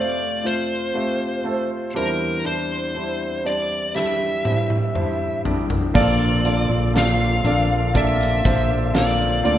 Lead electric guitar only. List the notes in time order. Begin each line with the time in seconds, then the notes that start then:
Already playing: D5
0.46 C5
1.97 A#4
2.46 C5
3.47 D5
3.96 E5
5.97 D5
6.98 F5
7.97 E5
8.97 D5